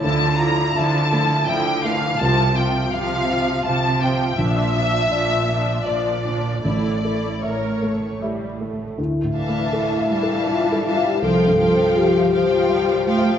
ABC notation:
X:1
M:3/4
L:1/16
Q:1/4=81
K:Dm
V:1 name="Violin section"
a2 b2 a4 g2 f2 | a2 g2 f4 a2 g2 | e8 d4 | d4 ^c4 z4 |
z2 a4 a4 a2 | g2 g4 g4 g2 |]
V:2 name="Violin section"
z12 | z12 | z12 | z12 |
z2 [ef]4 [ef]4 [ef]2 | [cf]2 [cf]4 [cf]4 [cf]2 |]
V:3 name="French horn section"
z12 | z12 | z12 | z12 |
E8 F E F G | A4 G6 z2 |]
V:4 name="Grand piano"
D,,2 F2 e2 A,2 e2 A,2 | C,,2 F2 f2 C2 f2 C2 | B,,,2 F2 d2 D2 d2 D2 | A,,,2 A2 e2 A,2 e2 A,2 |
(3D,,2 A,,2 A,2 (3A2 f2 A2 (3a2 A2 f2 | (3C,,2 G,,2 C2 (3F2 f2 c2 (3f2 c2 f2 |]
V:5 name="Viola section"
[F,E]2 [F,E]2 [F,E]2 [F,E]2 [F,E]2 [E,F,]2 | [F,F]2 [F,F]2 [F,F]2 [F,F]2 [F,F]2 [F,F]2 | [F,D]2 [F,D]2 [F,D]2 [F,D]2 [F,D]2 [F,D]2 | [A,E]2 [A,E]2 B2 A,2 G,2 A,2 |
z2 [E,D]4 [E,D]4 [E,D]2 | [F,F]2 [F,F]4 [F,F]4 [F,F]2 |]
V:6 name="Cello section" clef=bass
D,4 D,4 D,4 | C,4 C,4 C,4 | B,,4 B,,4 B,,4 | A,,4 A,,4 A,,4 |
z4 A,2 G,6 | F,2 F,6 G,2 A,2 |]